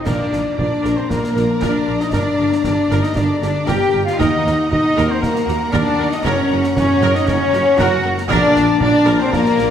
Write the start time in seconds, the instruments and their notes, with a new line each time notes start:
0.05 double bass section A#1, tuba A#1, harp A#2, french horn section D4, cello section D4, viola section A#4, violin section D5 A#5, flute D5, trumpet D5, concert bass drum, snare, crash
0.31 double bass section A#1, tuba A#1, harp D4, viola section A#4, snare
0.57 tuba A#1, double bass section A#1, cello section D4, french horn section D4, viola section F4 A#4, harp A#4, trumpet D5, violin section D5, flute D5, concert bass drum
0.83 tuba A#1, double bass section A#1, harp F4, viola section A#4, snare
0.96 french horn section C4, cello section C4, violin section C5, trumpet C5, flute C5
1.09 double bass section A#1, tuba A#1, harp F3, cello section A#3, french horn section A#3, trumpet A#4, flute A#4, viola section A#4, violin section A#4, concert bass drum, snare
1.24 snare
1.35 double bass section A#1, tuba A#1, harp D4, viola section F4 A#4, snare
1.61 double bass section A#1, tuba A#1, cello section D4, french horn section D4, harp A#4, viola section A#4, violin section D5, flute D5, trumpet D5, concert bass drum, snare
1.86 tuba A#1, double bass section A#1, harp F4, viola section A#4
2.00 cello section D#4, french horn section D#4, violin section D#5, trumpet D#5, flute D#5, snare
2.12 tuba G1, double bass section G1, harp G2, cello section D4, viola section A#4, flute D5, violin section D5, trumpet D5, concert bass drum, snare
2.16 french horn section D4
2.39 tuba G1, double bass section G1, harp A#3, viola section A#4
2.52 snare
2.64 double bass section G1, tuba G1, cello section D4, french horn section D4, viola section G4 A#4, harp A#4, trumpet D5, flute D5, violin section D5, concert bass drum, snare
2.90 double bass section G1, tuba G1, harp G4, viola section A#4, snare
3.02 french horn section D#4, cello section D#4, violin section D#5, trumpet D#5, flute D#5, snare
3.15 double bass section G1, tuba G1, harp D3, cello section D4, french horn section D4, viola section A#4, trumpet D5, flute D5, violin section D5, concert bass drum, snare
3.41 tuba G1, double bass section G1, harp A#3, french horn section D4, cello section D4, viola section G4 A#4, trumpet D5, flute D5, violin section D5, snare
3.66 double bass section G1, tuba G1, cello section G4, french horn section G4, harp A#4, viola section A#4, flute G5, trumpet G5, violin section G5, concert bass drum, snare
3.93 tuba G1, double bass section G1, harp G4, viola section A#4
4.05 french horn section F4, cello section F4, flute F5, trumpet F5, violin section F5, snare
4.17 tuba D#2, double bass section D#2, harp D#3, french horn section D#4, cello section D#4, viola section A#4, flute D#5, trumpet D#5, violin section D#5 A#5, concert bass drum, snare
4.21 violin section F#5
4.45 tuba D#2, double bass section D#2, harp A#3, viola section A#4, snare
4.69 double bass section D#2, tuba D#2, cello section D#4, french horn section D#4, viola section F#4 A#4, harp A#4, flute D#5, violin section D#5, trumpet D#5
4.73 concert bass drum
4.96 double bass section D#2, tuba D#2, harp F#4, viola section A#4, snare
5.07 cello section C4, french horn section C4, violin section C5, flute C5, trumpet C5
5.20 tuba D#2, double bass section D#2, french horn section A#3, cello section A#3, violin section A#4, viola section A#4, flute A#4, trumpet A#4, concert bass drum, snare
5.36 snare
5.47 double bass section D#2, tuba D#2, harp A#3, viola section F#4 A#4, snare
5.72 tuba D#2, double bass section D#2, cello section D4, french horn section D4, harp A#4, viola section A#4, trumpet D5, flute D5, violin section D5, concert bass drum, snare
5.98 double bass section D#2, tuba D#2, harp F#4, viola section A#4
6.11 cello section D#4, french horn section D#4, flute D#5, trumpet D#5, violin section D#5, snare
6.23 tuba F#1, harp F#2, double bass section F#2, cello section C#4, french horn section C#4, viola section A#4, flute C#5, trumpet C#5, violin section C#5, concert bass drum, snare
6.49 tuba F#1, double bass section F#2, harp A#3, viola section A#4
6.64 snare
6.75 tuba F#1, double bass section F#2, cello section C#4, french horn section C#4, viola section F#4 A#4, harp A#4, trumpet C#5, violin section C#5, flute C#5, concert bass drum, snare
7.00 tuba F#1, double bass section F#2, harp F#4, viola section A#4, snare
7.14 cello section D#4, french horn section D#4, trumpet D#5, violin section D#5, flute D#5, snare
7.26 tuba F#1, double bass section F#2, harp C#3, cello section C#4, french horn section C#4, viola section A#4, trumpet C#5, violin section C#5, flute C#5, concert bass drum, snare
7.52 tuba F#1, double bass section F#2, harp A#3, viola section F#4 A#4, snare
7.77 tuba F#1, double bass section F#2, cello section F#4, french horn section F#4, harp A#4, viola section A#4, trumpet F#5, violin section F#5, flute F#5, concert bass drum, snare
8.03 tuba F#1, double bass section F#2, harp F#4, viola section A#4
8.18 snare
8.29 double bass section A#1, tuba A#1, harp A#2, timpani A#2, cello section D4, french horn section D4, viola section A#4, flute D5, trumpet D5, violin section D5 A#5, concert bass drum, snare, crash
8.55 double bass section A#1, tuba A#1, harp A#3, viola section A#4, snare
8.80 double bass section A#1, tuba A#1, french horn section D4, cello section D4, viola section F4 A#4, harp A#4, flute D5, trumpet D5, violin section D5, concert bass drum
9.06 double bass section A#1, tuba A#1, harp F4, viola section A#4, snare
9.18 cello section C4, french horn section C4, violin section C5, trumpet C5, flute C5
9.30 double bass section A#1, tuba A#1, harp F3, cello section A#3, french horn section A#3, violin section A#4, viola section A#4, trumpet A#4, flute A#4, concert bass drum, snare
9.46 snare
9.57 tuba A#1, double bass section A#1, harp A#3, viola section F4 A#4, snare